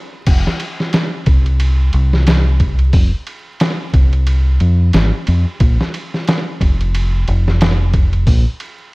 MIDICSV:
0, 0, Header, 1, 3, 480
1, 0, Start_track
1, 0, Key_signature, -4, "minor"
1, 0, Tempo, 666667
1, 194, Time_signature, 4, 2, 24, 8
1, 6437, End_track
2, 0, Start_track
2, 0, Title_t, "Fingered electric bass"
2, 0, Program_c, 0, 33
2, 195, Note_on_c, 0, 29, 102
2, 316, Note_off_c, 0, 29, 0
2, 915, Note_on_c, 0, 36, 87
2, 1375, Note_off_c, 0, 36, 0
2, 1396, Note_on_c, 0, 36, 82
2, 2095, Note_off_c, 0, 36, 0
2, 2114, Note_on_c, 0, 29, 104
2, 2235, Note_off_c, 0, 29, 0
2, 2836, Note_on_c, 0, 36, 88
2, 3296, Note_off_c, 0, 36, 0
2, 3316, Note_on_c, 0, 41, 83
2, 3531, Note_off_c, 0, 41, 0
2, 3557, Note_on_c, 0, 32, 90
2, 3676, Note_off_c, 0, 32, 0
2, 3802, Note_on_c, 0, 41, 93
2, 3919, Note_off_c, 0, 41, 0
2, 4036, Note_on_c, 0, 34, 108
2, 4156, Note_off_c, 0, 34, 0
2, 4761, Note_on_c, 0, 29, 93
2, 5218, Note_off_c, 0, 29, 0
2, 5240, Note_on_c, 0, 29, 90
2, 5938, Note_off_c, 0, 29, 0
2, 5957, Note_on_c, 0, 34, 107
2, 6076, Note_off_c, 0, 34, 0
2, 6437, End_track
3, 0, Start_track
3, 0, Title_t, "Drums"
3, 191, Note_on_c, 9, 49, 89
3, 191, Note_on_c, 9, 51, 89
3, 194, Note_on_c, 9, 36, 107
3, 263, Note_off_c, 9, 49, 0
3, 263, Note_off_c, 9, 51, 0
3, 266, Note_off_c, 9, 36, 0
3, 338, Note_on_c, 9, 38, 46
3, 410, Note_off_c, 9, 38, 0
3, 430, Note_on_c, 9, 51, 73
3, 502, Note_off_c, 9, 51, 0
3, 577, Note_on_c, 9, 38, 36
3, 649, Note_off_c, 9, 38, 0
3, 669, Note_on_c, 9, 51, 84
3, 677, Note_on_c, 9, 38, 101
3, 741, Note_off_c, 9, 51, 0
3, 749, Note_off_c, 9, 38, 0
3, 909, Note_on_c, 9, 51, 65
3, 913, Note_on_c, 9, 36, 90
3, 981, Note_off_c, 9, 51, 0
3, 985, Note_off_c, 9, 36, 0
3, 1051, Note_on_c, 9, 51, 42
3, 1123, Note_off_c, 9, 51, 0
3, 1150, Note_on_c, 9, 51, 91
3, 1222, Note_off_c, 9, 51, 0
3, 1388, Note_on_c, 9, 51, 60
3, 1460, Note_off_c, 9, 51, 0
3, 1536, Note_on_c, 9, 38, 42
3, 1608, Note_off_c, 9, 38, 0
3, 1632, Note_on_c, 9, 51, 91
3, 1640, Note_on_c, 9, 38, 121
3, 1704, Note_off_c, 9, 51, 0
3, 1712, Note_off_c, 9, 38, 0
3, 1871, Note_on_c, 9, 51, 68
3, 1872, Note_on_c, 9, 36, 91
3, 1943, Note_off_c, 9, 51, 0
3, 1944, Note_off_c, 9, 36, 0
3, 2007, Note_on_c, 9, 51, 42
3, 2079, Note_off_c, 9, 51, 0
3, 2109, Note_on_c, 9, 46, 76
3, 2112, Note_on_c, 9, 36, 103
3, 2181, Note_off_c, 9, 46, 0
3, 2184, Note_off_c, 9, 36, 0
3, 2352, Note_on_c, 9, 51, 70
3, 2424, Note_off_c, 9, 51, 0
3, 2592, Note_on_c, 9, 51, 80
3, 2600, Note_on_c, 9, 38, 101
3, 2664, Note_off_c, 9, 51, 0
3, 2672, Note_off_c, 9, 38, 0
3, 2834, Note_on_c, 9, 36, 91
3, 2834, Note_on_c, 9, 51, 70
3, 2906, Note_off_c, 9, 36, 0
3, 2906, Note_off_c, 9, 51, 0
3, 2972, Note_on_c, 9, 51, 46
3, 3044, Note_off_c, 9, 51, 0
3, 3072, Note_on_c, 9, 51, 93
3, 3144, Note_off_c, 9, 51, 0
3, 3314, Note_on_c, 9, 51, 61
3, 3386, Note_off_c, 9, 51, 0
3, 3552, Note_on_c, 9, 51, 88
3, 3560, Note_on_c, 9, 38, 126
3, 3624, Note_off_c, 9, 51, 0
3, 3632, Note_off_c, 9, 38, 0
3, 3793, Note_on_c, 9, 51, 72
3, 3865, Note_off_c, 9, 51, 0
3, 4033, Note_on_c, 9, 51, 86
3, 4035, Note_on_c, 9, 36, 109
3, 4105, Note_off_c, 9, 51, 0
3, 4107, Note_off_c, 9, 36, 0
3, 4180, Note_on_c, 9, 38, 50
3, 4252, Note_off_c, 9, 38, 0
3, 4277, Note_on_c, 9, 51, 69
3, 4349, Note_off_c, 9, 51, 0
3, 4422, Note_on_c, 9, 38, 36
3, 4494, Note_off_c, 9, 38, 0
3, 4518, Note_on_c, 9, 51, 84
3, 4526, Note_on_c, 9, 38, 106
3, 4590, Note_off_c, 9, 51, 0
3, 4598, Note_off_c, 9, 38, 0
3, 4758, Note_on_c, 9, 36, 93
3, 4761, Note_on_c, 9, 51, 67
3, 4830, Note_off_c, 9, 36, 0
3, 4833, Note_off_c, 9, 51, 0
3, 4901, Note_on_c, 9, 51, 48
3, 4973, Note_off_c, 9, 51, 0
3, 5001, Note_on_c, 9, 51, 97
3, 5073, Note_off_c, 9, 51, 0
3, 5239, Note_on_c, 9, 51, 71
3, 5311, Note_off_c, 9, 51, 0
3, 5383, Note_on_c, 9, 38, 43
3, 5455, Note_off_c, 9, 38, 0
3, 5477, Note_on_c, 9, 51, 85
3, 5485, Note_on_c, 9, 38, 119
3, 5549, Note_off_c, 9, 51, 0
3, 5557, Note_off_c, 9, 38, 0
3, 5713, Note_on_c, 9, 51, 70
3, 5715, Note_on_c, 9, 36, 100
3, 5785, Note_off_c, 9, 51, 0
3, 5787, Note_off_c, 9, 36, 0
3, 5853, Note_on_c, 9, 51, 44
3, 5925, Note_off_c, 9, 51, 0
3, 5953, Note_on_c, 9, 46, 79
3, 5954, Note_on_c, 9, 36, 103
3, 6025, Note_off_c, 9, 46, 0
3, 6026, Note_off_c, 9, 36, 0
3, 6192, Note_on_c, 9, 51, 72
3, 6264, Note_off_c, 9, 51, 0
3, 6437, End_track
0, 0, End_of_file